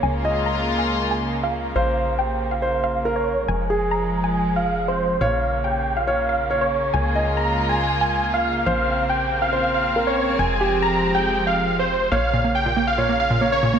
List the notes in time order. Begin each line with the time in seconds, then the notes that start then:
Already playing: C#3 A#3 C#5
0.03 C#2 G#3 F4 G#5
0.25 D#5
0.46 A#5
0.79 G#5
1.11 G#5
1.43 F5
1.76 A#1 C5 F5
2.19 G5
2.51 F5
2.62 C5
2.84 F5
3.05 A#4
3.16 C#5
3.48 F1 F3 G#3 G#5
3.70 G#4
3.91 A#5
4.24 G#5
4.56 F5
4.88 C5
5.21 A#1 C#3 A#3 C#5 F5
5.64 G5
5.97 F5
6.07 C#5
6.29 F5
6.50 C#5
6.61 C#5
6.94 C#2 G#3 F4 G#5
7.15 D#5
7.37 A#5
7.69 G#5
8.01 G#5
8.34 F5
8.66 A#1 C4 C5 F5
9.09 G5
9.42 F5
9.53 C5
9.74 F5
9.96 A#4
10.07 C#5
10.39 F1 F3 G#3 G#5
10.61 G4
10.82 A#5
11.15 G5
11.47 F5
11.79 C5
12.12 A#1 C#3 A#3 C#5 F5
12.34 A#2
12.44 A#3
12.55 G5
12.66 A#2
12.77 A#3
12.87 F5
12.98 A#2 C#5
13.09 A#3
13.20 F5
13.31 A#2
13.41 A#3 C#5
13.52 C#5
13.63 A#2
13.74 A#3